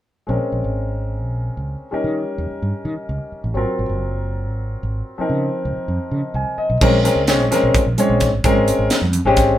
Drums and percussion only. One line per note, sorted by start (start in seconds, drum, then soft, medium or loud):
6.81 kick medium
6.81 crash medium
6.81 high conga medium
6.94 low conga medium
7.05 snare soft
7.05 closed hi-hat medium
7.18 low conga soft
7.28 snare loud
7.28 closed hi-hat medium
7.40 high conga medium
7.52 snare soft
7.52 closed hi-hat medium
7.52 low conga medium
7.74 kick loud
7.74 closed hi-hat medium
7.98 closed hi-hat medium
7.98 high conga medium
7.98 low conga soft
8.10 low conga medium
8.20 kick medium
8.20 snare soft
8.20 closed hi-hat medium
8.34 low conga soft
8.44 kick medium
8.44 closed hi-hat medium
8.44 high conga medium
8.57 low conga medium
8.68 closed hi-hat medium
8.80 low conga soft
8.90 snare loud
8.90 closed hi-hat medium
9.04 high conga medium
9.13 closed hi-hat medium
9.13 low conga medium
9.37 kick loud
9.37 snare soft
9.37 closed hi-hat medium